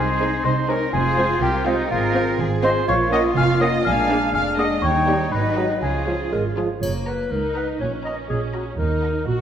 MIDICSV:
0, 0, Header, 1, 13, 480
1, 0, Start_track
1, 0, Key_signature, 6, "major"
1, 0, Tempo, 487013
1, 919, Time_signature, 2, 2, 24, 8
1, 4277, Tempo, 493421
1, 9210, End_track
2, 0, Start_track
2, 0, Title_t, "Celesta"
2, 0, Program_c, 0, 8
2, 0, Note_on_c, 0, 80, 79
2, 406, Note_off_c, 0, 80, 0
2, 441, Note_on_c, 0, 84, 94
2, 663, Note_off_c, 0, 84, 0
2, 678, Note_on_c, 0, 82, 86
2, 902, Note_off_c, 0, 82, 0
2, 917, Note_on_c, 0, 80, 85
2, 1364, Note_off_c, 0, 80, 0
2, 1404, Note_on_c, 0, 79, 88
2, 1624, Note_off_c, 0, 79, 0
2, 1651, Note_on_c, 0, 75, 84
2, 1867, Note_off_c, 0, 75, 0
2, 1884, Note_on_c, 0, 77, 85
2, 2325, Note_off_c, 0, 77, 0
2, 2606, Note_on_c, 0, 84, 91
2, 2824, Note_off_c, 0, 84, 0
2, 2849, Note_on_c, 0, 85, 99
2, 3066, Note_off_c, 0, 85, 0
2, 3078, Note_on_c, 0, 87, 95
2, 3299, Note_off_c, 0, 87, 0
2, 3325, Note_on_c, 0, 89, 102
2, 3544, Note_off_c, 0, 89, 0
2, 3561, Note_on_c, 0, 87, 84
2, 3783, Note_off_c, 0, 87, 0
2, 3793, Note_on_c, 0, 89, 107
2, 4242, Note_off_c, 0, 89, 0
2, 4284, Note_on_c, 0, 89, 86
2, 4503, Note_off_c, 0, 89, 0
2, 4520, Note_on_c, 0, 87, 94
2, 4740, Note_off_c, 0, 87, 0
2, 4744, Note_on_c, 0, 85, 82
2, 5193, Note_off_c, 0, 85, 0
2, 5227, Note_on_c, 0, 83, 74
2, 5681, Note_off_c, 0, 83, 0
2, 5719, Note_on_c, 0, 80, 60
2, 6174, Note_off_c, 0, 80, 0
2, 9210, End_track
3, 0, Start_track
3, 0, Title_t, "Flute"
3, 0, Program_c, 1, 73
3, 0, Note_on_c, 1, 72, 81
3, 439, Note_on_c, 1, 75, 66
3, 454, Note_off_c, 1, 72, 0
3, 676, Note_off_c, 1, 75, 0
3, 681, Note_on_c, 1, 73, 69
3, 741, Note_off_c, 1, 73, 0
3, 922, Note_on_c, 1, 72, 81
3, 1391, Note_off_c, 1, 72, 0
3, 1401, Note_on_c, 1, 70, 63
3, 1639, Note_on_c, 1, 67, 71
3, 1654, Note_off_c, 1, 70, 0
3, 1877, Note_off_c, 1, 67, 0
3, 1884, Note_on_c, 1, 68, 76
3, 2349, Note_off_c, 1, 68, 0
3, 2596, Note_on_c, 1, 75, 81
3, 2655, Note_off_c, 1, 75, 0
3, 2835, Note_on_c, 1, 77, 88
3, 2894, Note_off_c, 1, 77, 0
3, 3079, Note_on_c, 1, 78, 83
3, 3138, Note_off_c, 1, 78, 0
3, 3322, Note_on_c, 1, 80, 77
3, 3381, Note_off_c, 1, 80, 0
3, 3561, Note_on_c, 1, 78, 78
3, 3620, Note_off_c, 1, 78, 0
3, 3802, Note_on_c, 1, 80, 99
3, 4271, Note_off_c, 1, 80, 0
3, 4284, Note_on_c, 1, 80, 69
3, 4343, Note_off_c, 1, 80, 0
3, 4518, Note_on_c, 1, 78, 67
3, 4577, Note_off_c, 1, 78, 0
3, 4760, Note_on_c, 1, 79, 81
3, 5226, Note_off_c, 1, 79, 0
3, 5241, Note_on_c, 1, 75, 59
3, 5712, Note_off_c, 1, 75, 0
3, 5719, Note_on_c, 1, 73, 55
3, 6198, Note_off_c, 1, 73, 0
3, 9210, End_track
4, 0, Start_track
4, 0, Title_t, "Violin section"
4, 0, Program_c, 2, 48
4, 0, Note_on_c, 2, 68, 71
4, 438, Note_on_c, 2, 72, 72
4, 440, Note_off_c, 2, 68, 0
4, 517, Note_off_c, 2, 72, 0
4, 677, Note_on_c, 2, 70, 75
4, 913, Note_off_c, 2, 70, 0
4, 926, Note_on_c, 2, 68, 75
4, 1393, Note_off_c, 2, 68, 0
4, 1401, Note_on_c, 2, 67, 71
4, 1634, Note_off_c, 2, 67, 0
4, 1641, Note_on_c, 2, 63, 78
4, 1873, Note_off_c, 2, 63, 0
4, 1883, Note_on_c, 2, 65, 74
4, 2358, Note_off_c, 2, 65, 0
4, 2592, Note_on_c, 2, 72, 85
4, 2670, Note_off_c, 2, 72, 0
4, 2840, Note_on_c, 2, 73, 79
4, 2919, Note_off_c, 2, 73, 0
4, 3083, Note_on_c, 2, 75, 83
4, 3162, Note_off_c, 2, 75, 0
4, 3317, Note_on_c, 2, 77, 84
4, 3552, Note_off_c, 2, 77, 0
4, 3560, Note_on_c, 2, 75, 83
4, 3794, Note_off_c, 2, 75, 0
4, 3795, Note_on_c, 2, 77, 83
4, 4273, Note_off_c, 2, 77, 0
4, 4285, Note_on_c, 2, 77, 80
4, 4515, Note_off_c, 2, 77, 0
4, 4523, Note_on_c, 2, 75, 75
4, 4753, Note_off_c, 2, 75, 0
4, 4760, Note_on_c, 2, 73, 72
4, 5233, Note_on_c, 2, 71, 69
4, 5235, Note_off_c, 2, 73, 0
4, 5708, Note_off_c, 2, 71, 0
4, 5713, Note_on_c, 2, 68, 55
4, 6195, Note_off_c, 2, 68, 0
4, 6939, Note_on_c, 2, 78, 46
4, 6939, Note_on_c, 2, 82, 44
4, 7114, Note_off_c, 2, 78, 0
4, 7114, Note_off_c, 2, 82, 0
4, 7420, Note_on_c, 2, 78, 55
4, 7421, Note_on_c, 2, 82, 50
4, 7593, Note_off_c, 2, 78, 0
4, 7594, Note_off_c, 2, 82, 0
4, 7894, Note_on_c, 2, 78, 47
4, 7894, Note_on_c, 2, 82, 46
4, 8068, Note_off_c, 2, 78, 0
4, 8068, Note_off_c, 2, 82, 0
4, 8369, Note_on_c, 2, 82, 51
4, 8370, Note_on_c, 2, 78, 53
4, 8545, Note_off_c, 2, 78, 0
4, 8545, Note_off_c, 2, 82, 0
4, 8850, Note_on_c, 2, 78, 44
4, 8850, Note_on_c, 2, 82, 49
4, 9023, Note_off_c, 2, 78, 0
4, 9023, Note_off_c, 2, 82, 0
4, 9210, End_track
5, 0, Start_track
5, 0, Title_t, "Clarinet"
5, 0, Program_c, 3, 71
5, 199, Note_on_c, 3, 75, 56
5, 286, Note_off_c, 3, 75, 0
5, 676, Note_on_c, 3, 75, 56
5, 763, Note_off_c, 3, 75, 0
5, 1157, Note_on_c, 3, 72, 57
5, 1244, Note_off_c, 3, 72, 0
5, 1634, Note_on_c, 3, 72, 59
5, 1721, Note_off_c, 3, 72, 0
5, 2111, Note_on_c, 3, 72, 63
5, 2198, Note_off_c, 3, 72, 0
5, 2588, Note_on_c, 3, 72, 66
5, 2676, Note_off_c, 3, 72, 0
5, 3066, Note_on_c, 3, 73, 60
5, 3155, Note_off_c, 3, 73, 0
5, 3555, Note_on_c, 3, 73, 62
5, 3641, Note_off_c, 3, 73, 0
5, 4039, Note_on_c, 3, 74, 58
5, 4125, Note_off_c, 3, 74, 0
5, 4519, Note_on_c, 3, 74, 56
5, 4604, Note_off_c, 3, 74, 0
5, 4997, Note_on_c, 3, 75, 50
5, 5082, Note_off_c, 3, 75, 0
5, 5472, Note_on_c, 3, 75, 45
5, 5560, Note_off_c, 3, 75, 0
5, 5962, Note_on_c, 3, 73, 43
5, 6050, Note_off_c, 3, 73, 0
5, 6198, Note_on_c, 3, 70, 64
5, 6311, Note_off_c, 3, 70, 0
5, 6447, Note_on_c, 3, 68, 45
5, 6557, Note_off_c, 3, 68, 0
5, 6687, Note_on_c, 3, 73, 70
5, 6796, Note_off_c, 3, 73, 0
5, 6927, Note_on_c, 3, 71, 62
5, 7172, Note_on_c, 3, 70, 69
5, 7187, Note_off_c, 3, 71, 0
5, 7404, Note_off_c, 3, 70, 0
5, 7410, Note_on_c, 3, 71, 61
5, 7518, Note_off_c, 3, 71, 0
5, 7646, Note_on_c, 3, 73, 68
5, 7754, Note_off_c, 3, 73, 0
5, 7884, Note_on_c, 3, 75, 66
5, 7992, Note_off_c, 3, 75, 0
5, 8123, Note_on_c, 3, 68, 69
5, 8231, Note_off_c, 3, 68, 0
5, 8363, Note_on_c, 3, 66, 46
5, 8471, Note_off_c, 3, 66, 0
5, 8602, Note_on_c, 3, 70, 74
5, 9068, Note_off_c, 3, 70, 0
5, 9076, Note_on_c, 3, 66, 63
5, 9183, Note_off_c, 3, 66, 0
5, 9210, End_track
6, 0, Start_track
6, 0, Title_t, "Oboe"
6, 0, Program_c, 4, 68
6, 0, Note_on_c, 4, 68, 71
6, 441, Note_on_c, 4, 72, 66
6, 456, Note_off_c, 4, 68, 0
6, 684, Note_on_c, 4, 70, 67
6, 698, Note_off_c, 4, 72, 0
6, 916, Note_off_c, 4, 70, 0
6, 922, Note_on_c, 4, 68, 72
6, 1391, Note_off_c, 4, 68, 0
6, 1395, Note_on_c, 4, 67, 70
6, 1628, Note_off_c, 4, 67, 0
6, 1634, Note_on_c, 4, 63, 67
6, 1867, Note_off_c, 4, 63, 0
6, 1873, Note_on_c, 4, 65, 76
6, 2343, Note_off_c, 4, 65, 0
6, 2591, Note_on_c, 4, 72, 77
6, 2816, Note_off_c, 4, 72, 0
6, 2836, Note_on_c, 4, 73, 81
6, 3070, Note_off_c, 4, 73, 0
6, 3078, Note_on_c, 4, 75, 84
6, 3185, Note_off_c, 4, 75, 0
6, 3311, Note_on_c, 4, 77, 84
6, 3549, Note_off_c, 4, 77, 0
6, 3556, Note_on_c, 4, 75, 80
6, 3664, Note_off_c, 4, 75, 0
6, 3794, Note_on_c, 4, 77, 79
6, 4267, Note_off_c, 4, 77, 0
6, 4275, Note_on_c, 4, 77, 78
6, 4383, Note_off_c, 4, 77, 0
6, 4517, Note_on_c, 4, 75, 67
6, 4624, Note_off_c, 4, 75, 0
6, 4754, Note_on_c, 4, 73, 72
6, 5235, Note_on_c, 4, 71, 61
6, 5249, Note_off_c, 4, 73, 0
6, 5719, Note_off_c, 4, 71, 0
6, 5725, Note_on_c, 4, 68, 51
6, 6201, Note_off_c, 4, 68, 0
6, 9210, End_track
7, 0, Start_track
7, 0, Title_t, "Violin section"
7, 0, Program_c, 5, 48
7, 200, Note_on_c, 5, 68, 67
7, 378, Note_off_c, 5, 68, 0
7, 683, Note_on_c, 5, 68, 63
7, 859, Note_off_c, 5, 68, 0
7, 1155, Note_on_c, 5, 65, 67
7, 1335, Note_off_c, 5, 65, 0
7, 1637, Note_on_c, 5, 65, 73
7, 1815, Note_off_c, 5, 65, 0
7, 2114, Note_on_c, 5, 65, 70
7, 2292, Note_off_c, 5, 65, 0
7, 2599, Note_on_c, 5, 65, 70
7, 2776, Note_off_c, 5, 65, 0
7, 3082, Note_on_c, 5, 65, 69
7, 3257, Note_off_c, 5, 65, 0
7, 3561, Note_on_c, 5, 65, 67
7, 3738, Note_off_c, 5, 65, 0
7, 4046, Note_on_c, 5, 68, 68
7, 4221, Note_off_c, 5, 68, 0
7, 4518, Note_on_c, 5, 68, 61
7, 4695, Note_off_c, 5, 68, 0
7, 4998, Note_on_c, 5, 67, 56
7, 5173, Note_off_c, 5, 67, 0
7, 5466, Note_on_c, 5, 66, 52
7, 5651, Note_off_c, 5, 66, 0
7, 5966, Note_on_c, 5, 65, 45
7, 6146, Note_off_c, 5, 65, 0
7, 6452, Note_on_c, 5, 65, 48
7, 6633, Note_off_c, 5, 65, 0
7, 6931, Note_on_c, 5, 82, 47
7, 7110, Note_off_c, 5, 82, 0
7, 7407, Note_on_c, 5, 82, 46
7, 7587, Note_off_c, 5, 82, 0
7, 7880, Note_on_c, 5, 82, 47
7, 8061, Note_off_c, 5, 82, 0
7, 8354, Note_on_c, 5, 82, 47
7, 8536, Note_off_c, 5, 82, 0
7, 8840, Note_on_c, 5, 82, 49
7, 9017, Note_off_c, 5, 82, 0
7, 9210, End_track
8, 0, Start_track
8, 0, Title_t, "Cello section"
8, 0, Program_c, 6, 48
8, 0, Note_on_c, 6, 63, 57
8, 919, Note_off_c, 6, 63, 0
8, 919, Note_on_c, 6, 65, 67
8, 1876, Note_off_c, 6, 65, 0
8, 1879, Note_on_c, 6, 70, 76
8, 2346, Note_off_c, 6, 70, 0
8, 2358, Note_on_c, 6, 68, 67
8, 2836, Note_off_c, 6, 68, 0
8, 2836, Note_on_c, 6, 65, 76
8, 3778, Note_off_c, 6, 65, 0
8, 3799, Note_on_c, 6, 62, 68
8, 4265, Note_off_c, 6, 62, 0
8, 4276, Note_on_c, 6, 62, 64
8, 4745, Note_off_c, 6, 62, 0
8, 4751, Note_on_c, 6, 63, 66
8, 5716, Note_off_c, 6, 63, 0
8, 5717, Note_on_c, 6, 65, 48
8, 6437, Note_off_c, 6, 65, 0
8, 6692, Note_on_c, 6, 42, 58
8, 7072, Note_off_c, 6, 42, 0
8, 7174, Note_on_c, 6, 37, 52
8, 7550, Note_off_c, 6, 37, 0
8, 7648, Note_on_c, 6, 46, 56
8, 8025, Note_off_c, 6, 46, 0
8, 8124, Note_on_c, 6, 46, 50
8, 8502, Note_off_c, 6, 46, 0
8, 8602, Note_on_c, 6, 39, 57
8, 8979, Note_off_c, 6, 39, 0
8, 9074, Note_on_c, 6, 46, 54
8, 9210, Note_off_c, 6, 46, 0
8, 9210, End_track
9, 0, Start_track
9, 0, Title_t, "French horn section"
9, 0, Program_c, 7, 60
9, 0, Note_on_c, 7, 60, 55
9, 0, Note_on_c, 7, 63, 58
9, 878, Note_off_c, 7, 63, 0
9, 879, Note_off_c, 7, 60, 0
9, 925, Note_on_c, 7, 65, 62
9, 926, Note_on_c, 7, 60, 71
9, 2800, Note_off_c, 7, 60, 0
9, 2826, Note_off_c, 7, 65, 0
9, 2838, Note_on_c, 7, 65, 72
9, 2839, Note_on_c, 7, 58, 70
9, 3779, Note_off_c, 7, 58, 0
9, 3779, Note_off_c, 7, 65, 0
9, 3793, Note_on_c, 7, 56, 65
9, 3798, Note_on_c, 7, 62, 64
9, 4753, Note_off_c, 7, 56, 0
9, 4755, Note_off_c, 7, 62, 0
9, 4763, Note_on_c, 7, 55, 62
9, 4769, Note_on_c, 7, 63, 63
9, 5227, Note_off_c, 7, 55, 0
9, 5242, Note_on_c, 7, 54, 53
9, 5706, Note_off_c, 7, 63, 0
9, 5713, Note_on_c, 7, 61, 50
9, 5718, Note_on_c, 7, 53, 47
9, 5722, Note_off_c, 7, 54, 0
9, 6450, Note_off_c, 7, 61, 0
9, 6452, Note_off_c, 7, 53, 0
9, 9210, End_track
10, 0, Start_track
10, 0, Title_t, "Viola section"
10, 0, Program_c, 8, 48
10, 207, Note_on_c, 8, 56, 58
10, 208, Note_on_c, 8, 63, 62
10, 382, Note_off_c, 8, 56, 0
10, 383, Note_off_c, 8, 63, 0
10, 684, Note_on_c, 8, 56, 56
10, 685, Note_on_c, 8, 63, 57
10, 860, Note_off_c, 8, 56, 0
10, 861, Note_off_c, 8, 63, 0
10, 1162, Note_on_c, 8, 60, 68
10, 1163, Note_on_c, 8, 56, 65
10, 1339, Note_off_c, 8, 60, 0
10, 1340, Note_off_c, 8, 56, 0
10, 1638, Note_on_c, 8, 56, 58
10, 1638, Note_on_c, 8, 60, 63
10, 1815, Note_off_c, 8, 60, 0
10, 1816, Note_off_c, 8, 56, 0
10, 2112, Note_on_c, 8, 60, 65
10, 2113, Note_off_c, 8, 60, 0
10, 2113, Note_on_c, 8, 60, 69
10, 2292, Note_off_c, 8, 60, 0
10, 2598, Note_on_c, 8, 60, 66
10, 2599, Note_off_c, 8, 60, 0
10, 2599, Note_on_c, 8, 60, 66
10, 2776, Note_off_c, 8, 60, 0
10, 3074, Note_on_c, 8, 58, 75
10, 3076, Note_on_c, 8, 61, 69
10, 3252, Note_off_c, 8, 58, 0
10, 3253, Note_off_c, 8, 61, 0
10, 3560, Note_on_c, 8, 58, 62
10, 3563, Note_on_c, 8, 61, 69
10, 3737, Note_off_c, 8, 58, 0
10, 3739, Note_off_c, 8, 61, 0
10, 4042, Note_on_c, 8, 62, 69
10, 4045, Note_on_c, 8, 58, 71
10, 4219, Note_off_c, 8, 62, 0
10, 4221, Note_off_c, 8, 58, 0
10, 4516, Note_on_c, 8, 58, 59
10, 4516, Note_on_c, 8, 62, 55
10, 4694, Note_off_c, 8, 58, 0
10, 4694, Note_off_c, 8, 62, 0
10, 4988, Note_on_c, 8, 63, 58
10, 4990, Note_on_c, 8, 58, 63
10, 5168, Note_off_c, 8, 63, 0
10, 5169, Note_off_c, 8, 58, 0
10, 5475, Note_on_c, 8, 63, 50
10, 5477, Note_on_c, 8, 56, 48
10, 5656, Note_off_c, 8, 63, 0
10, 5657, Note_off_c, 8, 56, 0
10, 5959, Note_on_c, 8, 61, 51
10, 5963, Note_on_c, 8, 56, 48
10, 6143, Note_off_c, 8, 61, 0
10, 6144, Note_off_c, 8, 56, 0
10, 6452, Note_on_c, 8, 56, 44
10, 6453, Note_on_c, 8, 61, 41
10, 6633, Note_off_c, 8, 56, 0
10, 6634, Note_off_c, 8, 61, 0
10, 6698, Note_on_c, 8, 58, 46
10, 7141, Note_off_c, 8, 58, 0
10, 7177, Note_on_c, 8, 63, 58
10, 7643, Note_off_c, 8, 63, 0
10, 7646, Note_on_c, 8, 61, 44
10, 8601, Note_off_c, 8, 61, 0
10, 8605, Note_on_c, 8, 63, 50
10, 9070, Note_off_c, 8, 63, 0
10, 9078, Note_on_c, 8, 66, 60
10, 9210, Note_off_c, 8, 66, 0
10, 9210, End_track
11, 0, Start_track
11, 0, Title_t, "Bassoon"
11, 0, Program_c, 10, 70
11, 195, Note_on_c, 10, 60, 49
11, 283, Note_off_c, 10, 60, 0
11, 678, Note_on_c, 10, 60, 51
11, 765, Note_off_c, 10, 60, 0
11, 1157, Note_on_c, 10, 60, 55
11, 1244, Note_off_c, 10, 60, 0
11, 1638, Note_on_c, 10, 60, 57
11, 1724, Note_off_c, 10, 60, 0
11, 2116, Note_on_c, 10, 60, 56
11, 2202, Note_off_c, 10, 60, 0
11, 2594, Note_on_c, 10, 60, 59
11, 2680, Note_off_c, 10, 60, 0
11, 3075, Note_on_c, 10, 58, 66
11, 3161, Note_off_c, 10, 58, 0
11, 3557, Note_on_c, 10, 58, 60
11, 3643, Note_off_c, 10, 58, 0
11, 4038, Note_on_c, 10, 56, 54
11, 4125, Note_off_c, 10, 56, 0
11, 4514, Note_on_c, 10, 56, 56
11, 4600, Note_off_c, 10, 56, 0
11, 4994, Note_on_c, 10, 55, 51
11, 5080, Note_off_c, 10, 55, 0
11, 5475, Note_on_c, 10, 54, 45
11, 5562, Note_off_c, 10, 54, 0
11, 5962, Note_on_c, 10, 53, 37
11, 6050, Note_off_c, 10, 53, 0
11, 6205, Note_on_c, 10, 56, 55
11, 6315, Note_off_c, 10, 56, 0
11, 6451, Note_on_c, 10, 53, 47
11, 6560, Note_off_c, 10, 53, 0
11, 9210, End_track
12, 0, Start_track
12, 0, Title_t, "Double bass section"
12, 0, Program_c, 11, 48
12, 0, Note_on_c, 11, 36, 72
12, 337, Note_off_c, 11, 36, 0
12, 436, Note_on_c, 11, 36, 75
12, 817, Note_off_c, 11, 36, 0
12, 914, Note_on_c, 11, 29, 82
12, 1296, Note_off_c, 11, 29, 0
12, 1395, Note_on_c, 11, 36, 81
12, 1775, Note_off_c, 11, 36, 0
12, 1875, Note_on_c, 11, 32, 79
12, 2253, Note_off_c, 11, 32, 0
12, 2353, Note_on_c, 11, 32, 80
12, 2733, Note_off_c, 11, 32, 0
12, 2837, Note_on_c, 11, 34, 83
12, 3215, Note_off_c, 11, 34, 0
12, 3313, Note_on_c, 11, 29, 81
12, 3695, Note_off_c, 11, 29, 0
12, 3795, Note_on_c, 11, 34, 86
12, 4176, Note_off_c, 11, 34, 0
12, 4274, Note_on_c, 11, 29, 69
12, 4653, Note_off_c, 11, 29, 0
12, 4754, Note_on_c, 11, 39, 77
12, 5132, Note_off_c, 11, 39, 0
12, 5232, Note_on_c, 11, 32, 59
12, 5615, Note_off_c, 11, 32, 0
12, 5715, Note_on_c, 11, 37, 58
12, 6103, Note_off_c, 11, 37, 0
12, 6204, Note_on_c, 11, 32, 54
12, 6592, Note_off_c, 11, 32, 0
12, 6695, Note_on_c, 11, 30, 56
12, 7073, Note_off_c, 11, 30, 0
12, 7171, Note_on_c, 11, 37, 50
12, 7549, Note_off_c, 11, 37, 0
12, 7648, Note_on_c, 11, 34, 60
12, 8026, Note_off_c, 11, 34, 0
12, 8128, Note_on_c, 11, 34, 51
12, 8504, Note_off_c, 11, 34, 0
12, 8598, Note_on_c, 11, 39, 61
12, 8976, Note_off_c, 11, 39, 0
12, 9076, Note_on_c, 11, 34, 52
12, 9210, Note_off_c, 11, 34, 0
12, 9210, End_track
13, 0, Start_track
13, 0, Title_t, "Drums"
13, 6699, Note_on_c, 9, 81, 33
13, 6796, Note_off_c, 9, 81, 0
13, 9210, End_track
0, 0, End_of_file